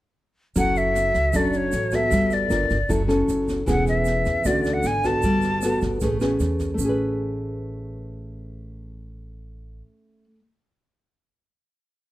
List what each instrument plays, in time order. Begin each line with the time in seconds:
0.56 upright bass F#1, nylon-string guitar F#3 C#4 E4 A4, flute F#5, kick, cross-stick, snare, shaker
0.76 flute E5, snare, shaker
0.95 snare, shaker
1.14 upright bass C#2, kick, snare, shaker
1.33 upright bass F#1, nylon-string guitar F#3 C#4 D4 A4, flute D5, kick, cross-stick, snare, shaker
1.53 flute C#5, snare, shaker
1.72 upright bass A1, snare, shaker
1.91 nylon-string guitar B3 F#4 A4, flute E5, kick, cross-stick, snare, shaker
2.10 upright bass G1, nylon-string guitar G3, kick, snare, shaker
2.31 flute D5, snare, shaker
2.50 upright bass G1, nylon-string guitar D4 F4 A#4, cross-stick, snare, shaker
2.70 upright bass G1, kick, snare, shaker
2.89 upright bass F#1, nylon-string guitar F#3 C#4 E4 A4, kick, snare, shaker
3.08 nylon-string guitar C#4 E4 A4, cross-stick, snare, shaker
3.28 upright bass F#1, snare, shaker
3.48 kick, snare, shaker
3.66 upright bass E1, nylon-string guitar E3 B3 C#4 G#4, flute F#5, kick, cross-stick, snare, shaker
3.87 flute E5, snare, shaker
4.05 snare, shaker
4.25 upright bass E2, kick, snare, shaker
4.44 upright bass D2, nylon-string guitar D3 A3 C#4 F#4, flute D5, kick, cross-stick, snare, shaker
4.64 snare, shaker
4.74 flute F#5
4.83 upright bass G#1, flute G#5, snare, shaker
5.04 nylon-string guitar B3 F#4 A4, flute A5, kick, cross-stick, snare, shaker
5.22 upright bass G1, nylon-string guitar G3, kick, snare, shaker
5.42 snare, shaker
5.62 nylon-string guitar B3 F#4 A4, cross-stick, snare, shaker
5.81 upright bass G1, kick, snare, shaker
6.00 upright bass A1, nylon-string guitar A3 C#4 G#4 B4, kick, snare, shaker
6.20 nylon-string guitar C#4 G#4 B4, cross-stick, snare, shaker
6.40 upright bass E2, snare, shaker
6.60 kick, snare, shaker
6.74 nylon-string guitar A3
6.78 upright bass A1, nylon-string guitar C#4, shaker
6.85 nylon-string guitar G#4
6.89 nylon-string guitar B4